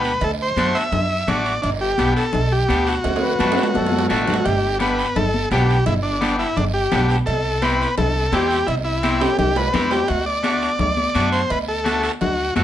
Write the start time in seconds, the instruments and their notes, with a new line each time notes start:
Already playing: upright bass D2, clean electric guitar B3 D4 G4, transistor combo organ B4
0.04 short guiro
0.21 upright bass D2, transistor combo organ A4, cowbell, long guiro
0.42 transistor combo organ C5
0.56 upright bass F#2, clean electric guitar A3 D4 F#4, cowbell, high conga, short guiro
0.75 transistor combo organ E5, short guiro
0.92 upright bass F#2, cowbell, low conga, long guiro
1.27 upright bass A1, clean electric guitar A3 D4 F#4, transistor combo organ D5, cowbell, high conga, low conga, short guiro
1.45 short guiro
1.62 upright bass G1, transistor combo organ D4, cowbell, long guiro
1.81 transistor combo organ G4
1.98 upright bass B1, clean electric guitar B3 D4 G4, cowbell, high conga, short guiro
2.16 transistor combo organ A4, short guiro
2.33 upright bass B1, cowbell, low conga, long guiro
2.52 transistor combo organ G4
2.69 upright bass D2, clean electric guitar B3 D4 G4, cowbell, high conga, short guiro
2.87 transistor combo organ F#4, short guiro
3.04 upright bass D2, cowbell, high timbale, long guiro
3.16 high timbale
3.22 accordion B4
3.39 upright bass F#2, clean electric guitar A3 D4 F#4, accordion B4, cowbell, high conga, low timbale, short guiro
3.52 high timbale
3.57 short guiro
3.63 low timbale
3.74 upright bass F#2, accordion A4, cowbell, high conga, low timbale, long guiro
3.86 low timbale
3.92 high conga
3.99 low timbale
4.10 upright bass A1, clean electric guitar A3 D4 F#4, accordion A4, cowbell, low timbale, short guiro
4.22 low timbale
4.27 transistor combo organ F#4, low conga, short guiro
4.34 low timbale
4.45 upright bass G1, transistor combo organ G4, cowbell, long guiro
4.79 clean electric guitar B3 D4 G4, transistor combo organ B4, cowbell, high conga, short guiro
4.99 short guiro
5.16 upright bass G1, transistor combo organ A4, cowbell, low conga, long guiro
5.34 high conga
5.51 upright bass B1, clean electric guitar B3 D4 G4, transistor combo organ G4, cowbell, high conga, low timbale, short guiro
5.70 short guiro
5.86 upright bass G1, transistor combo organ E4, cowbell, low conga, long guiro
6.03 transistor combo organ D4
6.21 clean electric guitar B3 D4 G4, cowbell, high conga, short guiro
6.39 transistor combo organ E4, short guiro
6.57 upright bass G1, transistor combo organ D4, cowbell, low conga, long guiro
6.74 transistor combo organ G4
6.92 upright bass B1, clean electric guitar B3 D4 G4, cowbell, high conga, low conga, low timbale, short guiro
7.08 transistor combo organ G4, short guiro
7.26 upright bass C2, transistor combo organ A4, cowbell, long guiro
7.62 clean electric guitar C4 E4 G4, transistor combo organ B4, cowbell, high conga, short guiro
7.81 short guiro
7.98 upright bass C2, transistor combo organ A4, cowbell, low conga, long guiro
8.32 upright bass E2, clean electric guitar C4 E4 G4, transistor combo organ G4, cowbell, high conga, low timbale, short guiro
8.51 short guiro
8.67 upright bass C2, transistor combo organ E4, cowbell, long guiro
8.84 transistor combo organ E4
9.03 clean electric guitar C4 E4 G4, cowbell, high conga, short guiro
9.21 transistor combo organ G4, high timbale, short guiro
9.38 upright bass C2, transistor combo organ G4, cowbell, low conga, long guiro
9.56 transistor combo organ B4, low timbale
9.74 upright bass E2, clean electric guitar C4 E4 G4, cowbell, high conga, low conga, short guiro
9.91 transistor combo organ G4, low timbale, short guiro
10.08 upright bass D2, transistor combo organ F#4, cowbell, long guiro
10.26 transistor combo organ D5
10.43 clean electric guitar A3 D4 F#4, cowbell, high conga, short guiro
10.62 short guiro
10.79 upright bass D2, transistor combo organ D5, cowbell, low conga, long guiro
10.97 high conga
11.15 upright bass F#2, clean electric guitar A3 D4 F#4, cowbell, high conga, short guiro
11.32 transistor combo organ C5, short guiro
11.50 upright bass D2, transistor combo organ B4, cowbell, long guiro
11.68 transistor combo organ A4
11.84 clean electric guitar A3 D4 F#4, cowbell, high conga, short guiro
12.03 transistor combo organ A4, short guiro
12.21 upright bass D2, transistor combo organ F#4, cowbell, low conga, long guiro
12.56 upright bass F#2, clean electric guitar A3 D4 F#4, cowbell, high conga, low timbale, short guiro